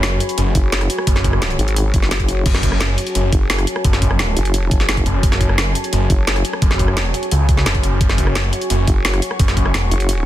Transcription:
Already playing: F#1 F#4 C#5 G#5 B5
0.03 snare, closed hi-hat
0.20 closed hi-hat
0.29 closed hi-hat
0.38 F#1, closed hi-hat
0.55 F#1, kick, closed hi-hat
0.72 snare, closed hi-hat
0.81 cross-stick, closed hi-hat
0.90 closed hi-hat
0.98 cross-stick
1.07 F#1, kick, closed hi-hat
1.16 cross-stick, snare, closed hi-hat
1.24 kick, closed hi-hat
1.33 cross-stick
1.42 snare, closed hi-hat
1.50 closed hi-hat
1.59 G#1, closed hi-hat
1.68 closed hi-hat
1.76 closed hi-hat
1.94 F#1, kick, closed hi-hat
2.03 snare
2.11 snare, closed hi-hat
2.20 kick, closed hi-hat
2.29 closed hi-hat
2.46 F#1 A5, kick, closed hi-hat, crash
2.55 cross-stick, snare, closed hi-hat
2.63 kick, closed hi-hat
2.72 cross-stick
2.81 snare, closed hi-hat
2.98 closed hi-hat
3.07 closed hi-hat
3.15 F#1, closed hi-hat
3.33 F#1, kick, closed hi-hat
3.50 snare, closed hi-hat
3.59 cross-stick, closed hi-hat
3.67 closed hi-hat
3.76 cross-stick
3.85 F#1, kick, closed hi-hat
3.93 cross-stick, snare, closed hi-hat
4.02 kick, closed hi-hat
4.11 cross-stick
4.19 snare, closed hi-hat
4.37 F#1, closed hi-hat
4.45 closed hi-hat
4.54 closed hi-hat
4.71 F#1, kick, closed hi-hat
4.80 snare
4.89 snare, closed hi-hat
4.97 kick, closed hi-hat
5.06 F#1, closed hi-hat
5.23 F#1, kick, closed hi-hat
5.32 cross-stick, snare, closed hi-hat
5.41 kick, closed hi-hat
5.49 cross-stick
5.58 snare, closed hi-hat
5.75 closed hi-hat
5.84 closed hi-hat
5.93 F#1, closed hi-hat
6.10 F#1, kick, closed hi-hat
6.27 snare, closed hi-hat
6.36 cross-stick, closed hi-hat
6.45 closed hi-hat
6.53 cross-stick
6.62 F#1, kick, closed hi-hat
6.71 cross-stick, snare, closed hi-hat
6.79 kick, closed hi-hat
6.88 cross-stick
6.97 snare, closed hi-hat
7.14 closed hi-hat
7.23 closed hi-hat
7.31 C#2, closed hi-hat
7.49 kick, closed hi-hat
7.57 snare
7.66 F#1, snare, closed hi-hat
7.75 kick, closed hi-hat
7.83 closed hi-hat
8.01 F#1 C#6, kick, closed hi-hat
8.10 cross-stick, snare, closed hi-hat
8.18 kick, closed hi-hat
8.27 cross-stick
8.35 snare, closed hi-hat
8.53 closed hi-hat
8.61 closed hi-hat
8.70 F#1, closed hi-hat
8.88 F#1, kick, closed hi-hat
9.05 snare, closed hi-hat
9.14 cross-stick, closed hi-hat
9.22 closed hi-hat
9.31 cross-stick
9.39 F#1, kick, closed hi-hat
9.48 cross-stick, snare, closed hi-hat
9.57 kick, closed hi-hat
9.66 cross-stick
9.74 snare, closed hi-hat
9.91 F#1, closed hi-hat
10.00 closed hi-hat
10.09 closed hi-hat

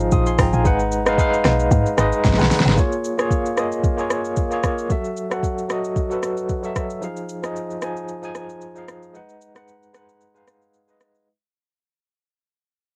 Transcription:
Already playing: G#1 F3 D#4 G#4 D#5 F5
0.00 shaker
0.12 A#1 C6 D#6, kick, shaker
0.26 G#5 C6, shaker
0.39 G#1 G5 A#5, kick, cross-stick, open hi-hat, shaker
0.53 A#1 F5 G#5, shaker
0.64 G#1 G#3 D#4 B4 F#5, kick, shaker
0.80 shaker
0.92 shaker
1.05 G#3 D#4 B4 F5, cross-stick, shaker
1.17 G#3 D#4 B4 F5, kick, shaker
1.34 shaker
1.45 B1, cross-stick, snare, shaker
1.60 shaker
1.71 G#2, kick, shaker
1.86 shaker
1.97 G#1 G#3 D#4 B4 D#5, cross-stick, shaker
2.12 shaker
2.24 G#1, kick, snare, shaker
2.33 snare
2.38 B1 G#3 D#4 B4 F#5, shaker
2.42 snare
2.51 snare, open hi-hat, shaker
2.60 snare
2.66 G#1, snare, shaker
2.76 A#3 F4 G#4 C#5, kick, shaker
2.92 shaker
3.04 shaker
3.17 A#3 F4 G#4 C#5, cross-stick, shaker
3.31 kick, shaker
3.46 shaker
3.56 A#3 F4 G#4 D#5, cross-stick, shaker
3.72 shaker
3.84 kick, shaker
3.97 A#3 F4 G#4 C#5, shaker
4.10 cross-stick, shaker
4.25 shaker
4.37 kick, shaker
4.50 A#3 F4 G#4 C#5, shaker
4.63 kick, cross-stick, shaker
4.78 shaker
4.89 F#3 F#4 A4 E5, kick, shaker
5.05 shaker
5.17 shaker
5.30 F#3 F#4 A4 F#5, cross-stick, shaker
5.43 kick, shaker
5.58 shaker
5.68 F#3 F#4 A4 D#5, cross-stick, shaker
5.84 shaker
5.96 kick, shaker
6.10 F#3 F#4 A4 B4, shaker
6.23 cross-stick, shaker
6.37 shaker
6.49 kick, shaker
6.63 F#3 F#4 A4 E5, shaker
6.76 kick, cross-stick, shaker
6.90 shaker
7.01 F3 D#4 G#4 F5, shaker
7.17 shaker
7.29 shaker
7.42 F3 D#4 G#4 D#5, cross-stick, shaker
7.56 shaker
7.71 shaker
7.81 F3 D#4 G#4 G#5, cross-stick, shaker
7.97 shaker
8.08 shaker
8.22 F3 D#4 G#4 G#5, shaker
8.35 cross-stick, shaker
8.49 shaker
8.61 shaker
8.75 F3 D#4 G#4 F5, shaker
8.88 cross-stick, shaker
9.03 shaker
9.13 G#3 D#4 B4 F#5, shaker
9.29 shaker
9.41 shaker
9.55 G#3 D#4 B4 F#5, cross-stick, shaker
9.68 shaker
9.83 shaker
9.93 G#3 D#4 B4 F#5, cross-stick, shaker
10.09 shaker
10.21 shaker
10.34 G#3 D#4 B4 F5, shaker
10.47 cross-stick, shaker
10.62 shaker
10.74 shaker
10.87 G#3 D#4 B4 D#5, shaker
11.01 cross-stick, shaker
11.15 shaker

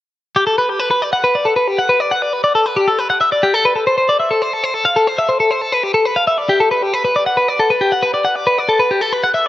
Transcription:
0.36 G4
0.47 A4
0.58 B4
0.69 G4
0.80 B4
0.91 B4
1.02 D5
1.13 F#5
1.24 B4
1.35 D5
1.45 A4
1.56 B4
1.68 G4
1.78 F#5
1.89 B4
2.00 D5
2.12 F#5
2.22 D5
2.33 B4
2.44 D5
2.55 A4
2.66 B4
2.77 G4
2.88 A4
2.99 B4
3.10 F#5
3.21 E5
3.32 D5
3.43 G4
3.54 A4
3.65 B4
3.76 A4
3.87 C5
3.98 C5
4.09 D5
4.20 E5
4.31 A4
4.42 C5
4.53 A4
4.64 C5
4.74 A4
4.85 F5
4.96 A4
5.07 C5
5.19 E5
5.29 C5
5.40 A4
5.51 C5
5.62 A4
5.72 B4
5.83 G4
5.94 A4
6.05 B4
6.16 F5
6.27 E5
6.38 D5
6.49 G4
6.60 A4
6.71 B4
6.83 G4
6.94 B4
7.05 B4
7.16 D5
7.26 F#5
7.37 B4
7.48 D5
7.60 A4
7.70 B4
7.81 G4
7.92 F#5
8.03 B4
8.14 D5
8.25 F#5
8.36 D5
8.47 B4
8.58 D5
8.69 A4
8.80 B4
8.91 G4
9.01 A4
9.13 B4
9.24 F#5
9.34 E5

